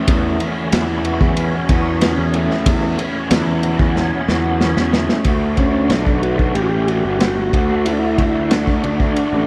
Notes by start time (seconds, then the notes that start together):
Already playing: E2 B2 E3 A3 C#4 F#4
0.07 E2, kick, ride
0.38 E3 C#4, ride
0.72 E2 E4, snare, ride
0.98 E2
1.05 F#4, ride
1.21 E2, kick
1.37 C#4, ride
1.59 B2
1.69 E2 F#4, kick, ride
2.01 C#4, snare, ride
2.18 E2 E3
2.34 A3, ride
2.50 snare
2.66 E2, kick, ride
2.81 E3
2.98 C#4, ride
3.31 E2 E4, snare, ride
3.42 E2
3.63 F#4, ride
3.79 E2, kick
3.96 C#4, snare
4.02 B2
4.28 E2 F#4, snare
4.61 E3 C#4, snare
4.77 E2, snare
4.93 A3, snare
5.09 snare
5.24 D2 D3 A3 D4 F#4, kick, ride
5.57 D3 A3 C#4 D4 F#4, kick, ride
5.89 B1 D3 A3 D4 F#4, snare, ride
6.06 A3 D4 F#4, kick
6.22 D3 A3 D4 F#4, ride
6.38 A3 D4 F#4, kick
6.54 A1 A2 E3 G3 C#4 G4, ride
6.58 F#4 G4
6.69 G4
6.74 G3 C#4
6.88 E3 G3 C#4 F#4 G4, ride
7.05 G1
7.20 A2 E3 G3 C#4 G4, snare, ride
7.37 muted overdriven electric guitar stroke
7.53 D2 D3 A3 D4 F#4, kick, ride
7.69 A3 D4 F#4
7.85 D3 A3 D4 E4 F#4, ride
7.92 D4
7.99 E4
8.18 D2 D3 A3 D4 F#4, kick, ride
8.50 D3 A3 D4 F#4, snare, ride
8.67 A3 D4 F#4, kick
8.83 D2 D3 A3 D4 F#4, ride
8.99 A3 D4 F#4, kick
9.16 ride
9.32 A1 A3 D4 F#4